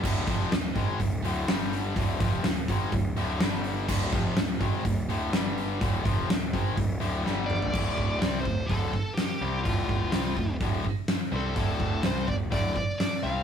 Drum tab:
CC |x---------------|----------------|x---------------|----------------|
HH |--o-o-o-o-o-o-o-|o-o-o-o-o-o-o-o-|--o-o-o-o-o-o-o-|o-o-o-o-o-o-----|
SD |---oo-------o---|----o-------o---|----o-------o---|----o-------o---|
T2 |----------------|----------------|----------------|--------------o-|
FT |----------------|----------------|----------------|---------------o|
BD |o-o---o-o-------|o-o---o-o-------|o-o---o-o-------|o-o---o-o-------|

CC |x---------------|----------------|----------------|
HH |----o---o---o---|o---o---o---o---|o---o---o---o---|
SD |----o-------o---|----o-------o---|----oo------o---|
T2 |----------------|----------------|----------------|
FT |----------------|----------------|----------------|
BD |o-o---o-o-o-----|o-o---o-o-o-----|o-o---o-o-o-----|